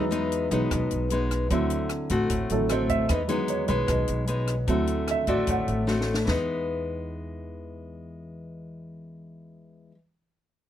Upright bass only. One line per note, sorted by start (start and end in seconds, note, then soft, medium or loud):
0.00 0.47 E2 medium
0.51 0.70 B1 medium
0.72 0.90 B1 medium
0.92 1.47 B1 medium
1.51 2.06 D2 medium
2.10 2.29 A1 medium
2.30 2.49 A1 medium
2.50 3.06 A1 medium
3.09 3.65 E2 medium
3.69 3.87 B1 medium
3.89 4.07 B1 medium
4.09 4.64 B1 medium
4.68 5.24 D2 medium
5.28 5.46 A1 medium
5.48 5.66 A1 medium
5.68 6.23 A1 medium
6.28 9.90 E2 medium